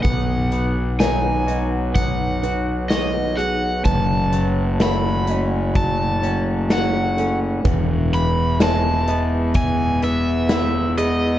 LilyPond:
<<
  \new Staff \with { instrumentName = "Overdriven electric guitar" } { \time 4/4 \key b \mixolydian \tempo 4 = 63 fis''4 gis''4 fis''4 dis''8 fis''8 | a''4 b''4 a''4 fis''8. r16 | r8 b''8 a''4 gis''8 e''4 dis''8 | }
  \new Staff \with { instrumentName = "Analog synth pad" } { \time 4/4 \key b \mixolydian <dis' b' cis'' fis''>1 | <a fis' cis'' fis''>1 | <gis e' b'>1 | }
  \new Staff \with { instrumentName = "Felt piano" } { \time 4/4 \key b \mixolydian b'4 cis''8 dis''4 b'4 gis'8 | b'4 cis''8 dis''4 cis''4 a'8 | b'4 cis''8 dis''4 b'4 gis'8 | }
  \new Staff \with { instrumentName = "Clean electric guitar" } { \time 4/4 \key b \mixolydian b8 b8 dis'8 fis'8 b8 fis'8 cis''8 fis'8 | fis,8 fis8 a8 cis'8 fis8 cis'8 fis'8 cis'8 | e,8 e8 gis8 b8 e8 b8 e'8 b8 | }
  \new Staff \with { instrumentName = "Fingered electric bass" } { \clef bass \time 4/4 \key b \mixolydian b,,1 | fis,,1 | e,,1 | }
  \new DrumStaff \with { instrumentName = "Drums" } \drummode { \time 4/4 <hh bd>8 hh8 <hh sn>8 hh8 <hh bd>8 hh8 <hh sn>8 hh8 | <hh bd>8 hh8 <hh sn>8 hh8 <hh bd>8 hh8 <hh sn>8 hh8 | <hh bd>8 hh8 <hh sn>8 hh8 <hh bd>8 hh8 <hh sn>8 hh8 | }
>>